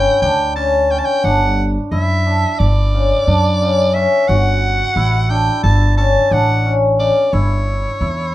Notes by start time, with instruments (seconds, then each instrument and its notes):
Already playing: hammered dulcimer C#4 E4, soprano saxophone G5
0.22 upright bass D2, hammered dulcimer D4, soprano saxophone G5
0.56 hammered dulcimer C#4, soprano saxophone A5
0.90 hammered dulcimer C#4, soprano saxophone G5
0.99 soprano saxophone A5
1.05 soprano saxophone G5
1.24 upright bass G1, hammered dulcimer D4, soprano saxophone F#5
1.92 upright bass F#2, hammered dulcimer E4, soprano saxophone E5
2.26 hammered dulcimer D4
2.59 upright bass G1, soprano saxophone D5
2.94 hammered dulcimer C#3
3.27 upright bass F#2, hammered dulcimer D4
3.61 hammered dulcimer C#3
3.94 hammered dulcimer C#4, soprano saxophone E5
4.28 upright bass G1, hammered dulcimer F#4, soprano saxophone F#5
4.96 upright bass A1, hammered dulcimer E4
5.29 hammered dulcimer D4, soprano saxophone G5
5.63 upright bass G1, soprano saxophone A5
5.97 hammered dulcimer C#4, soprano saxophone A5
6.31 upright bass A1, hammered dulcimer D4, soprano saxophone F#5
6.65 hammered dulcimer C#4
6.99 hammered dulcimer C#3, soprano saxophone D5
7.33 upright bass G1, hammered dulcimer E4, soprano saxophone C#5
8.01 upright bass E2, hammered dulcimer E4